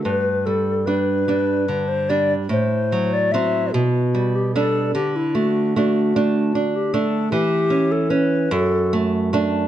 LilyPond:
<<
  \new Staff \with { instrumentName = "Recorder" } { \time 6/8 \key g \major \tempo 4. = 49 b'8 a'8 b'4~ b'16 c''16 d''8 | c''8. d''16 e''8 fis'8. g'16 a'8 | g'16 e'16 fis'8 fis'4~ fis'16 g'16 a'8 | g'8. a'16 b'8 a'8 r4 | }
  \new Staff \with { instrumentName = "Nylon-string guitar" } { \time 6/8 \key g \major g,8 g8 <g d'>8 <g d'>8 d8 <g d'>8 | a,8 fis8 <fis c'>8 b,8 g8 <g d'>8 | d8 a8 <a d'>8 <a d'>8 d'8 <a d'>8 | e8 cis'8 cis'8 fis,8 a8 <a d'>8 | }
>>